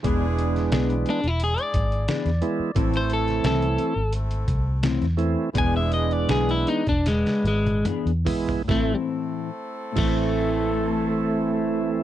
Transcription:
<<
  \new Staff \with { instrumentName = "Clean electric guitar" } { \time 4/4 \key a \minor \tempo 4 = 82 r4. d'16 e'16 gis'16 d''4.~ d''16~ | d''16 c''16 a'8 a'4 r2 | gis''16 e''16 dis''16 d''16 gis'16 e'16 dis'16 d'16 gis8 gis8 r4 | a16 r4 r16 a2~ a8 | }
  \new Staff \with { instrumentName = "Horn section" } { \time 4/4 \key a \minor <gis d' e' gis'>4 r4 <gis d' e' gis'>4 r4 | <a c' e' a'>4 r4 <a c' e' a'>4 r4 | <gis d' e' gis'>4 r4 <b d' e' b'>4 r4 | <a c' e' a'>1 | }
  \new Staff \with { instrumentName = "Clean electric guitar" } { \time 4/4 \key a \minor <e b d' gis'>8 r8 <e b d' gis'>8 <b d' gis'>8 r4 <e b d' gis'>8 r8 | <a, e c' e'>8 r8 <a, e c' e'>8 <e c' e'>8 r4 <a, e c' e'>8 r8 | <e b d' gis'>8 r8 <e b d' gis'>8 <b d' gis'>8 r4 <e b d' gis'>8 r8 | <a, e c' e'>8 r4 <a, e c' e'>2~ <a, e c' e'>8 | }
  \new Staff \with { instrumentName = "Tonewheel organ" } { \time 4/4 \key a \minor <e gis b d'>4. r2 <e gis b e'>8 | <e a c' e'>4. r2 <e a c' e'>8 | <e gis b d'>4. r2 <e gis b e'>8 | <e a c' e'>8 r4 <e a c' e'>2~ <e a c' e'>8 | }
  \new Staff \with { instrumentName = "Fingered electric bass" } { \clef bass \time 4/4 \key a \minor e,,4 b,,8 r16 e,,8 r16 gis,,8 r16 e,16 r8 | a,,4 c,8 r16 gis,,8. c,8. e,8 r16 | e,,4 b,,8 r16 e,,8 r16 gis,,8 r16 e,16 r8 | a,,16 r4 r16 a,,2~ a,,8 | }
  \new DrumStaff \with { instrumentName = "Drums" } \drummode { \time 4/4 <hh bd>8 hh16 <hh sn>16 <hh sn>16 hh16 hh16 hh16 hh16 hh16 <hh bd>16 hh16 <hh sn>16 <hh sn>16 hh8 | <hh bd>16 hh16 hh16 <hh sn>16 <hh sn>16 hh16 hh8 hh16 hh16 <hh bd>8 <hh sn>16 <hh sn>16 hh8 | <hh bd>8 hh16 hh16 <hh sn>16 hh16 hh16 <hh bd>16 <hh sn>16 <hh sn>16 hh16 <hh tommh>16 <hh toml>16 hh16 <hho tomfh>16 tomfh16 | <bd sn>4 r8 <cymc bd>8 r4 r4 | }
>>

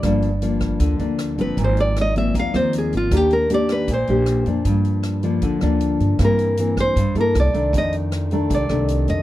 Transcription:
<<
  \new Staff \with { instrumentName = "Nylon-string guitar" } { \time 4/4 \key g \phrygian \tempo 4 = 156 r2. r8 ces''8 | c''8 d''8 ees''8 fes''8 f''8 c''8 aes'8 f'8 | g'8 bes'8 d''8 ces''8 c''2 | r1 |
bes'4. c''4 bes'8 d''4 | ees''8 r4. d''4. ees''8 | }
  \new Staff \with { instrumentName = "Nylon-string guitar" } { \time 4/4 \key g \phrygian << { <f bes d'>8 r8 <f bes d'>4. <f bes d'>4 <f bes c'>8~ | <f bes c'>4. <f bes c'>4 <f bes c'>4. | <bes d' g'>4 <bes d' g'>4 r8 <bes d' g'>4 <f bes d'>8~ | <f bes d'>4. <f bes d'>4 <f bes d'>4. |
<e bes c'>4 <e bes c'>4 r8 <bes e' a'>4 <ees a d'>8~ | <ees a d'>4. <ees a d'>4 <ees a d'>4. | } \\ { g,2 d2 | aes,2 ees2 | ees2 bes,2 | g,2 d2 |
g,2 g,4 r4 | f,2 c2 | } >> }
  \new Staff \with { instrumentName = "Upright bass" } { \clef bass \time 4/4 \key g \phrygian g,,2 d,8 d,4 g,,8 | aes,,2 ees,8 ees,4 aes,,8 | ees,2 bes,,8 bes,,4 f,8 | g,2 d,8 d,4 g,8 |
g,2 g,8 g,8 c,8 c,8 | f,2 c,8 c,4 f,8 | }
  \new DrumStaff \with { instrumentName = "Drums" } \drummode { \time 4/4 <hh bd ss>8 hh8 hh8 <hh bd ss>8 <hh bd>8 hh8 <hh ss>8 hh8 | <hh bd>8 hh8 <hh ss>8 hh8 <hh bd>8 <hh ss>8 hh8 hh8 | <hh bd ss>8 hh8 hh8 <hh ss>8 <hh bd>8 hh8 <hh ss>8 hh8 | <hh bd>8 hh8 <hh ss>8 hh8 <hh bd>8 <hh ss>8 hh8 hh8 |
<hh bd ss>8 hh8 hh8 <hh bd ss>8 <hh bd>8 hh8 <hh ss>8 hh8 | <hh bd>8 hh8 <hh ss>8 hh8 <hh bd>8 <hh ss>8 hh8 hh8 | }
>>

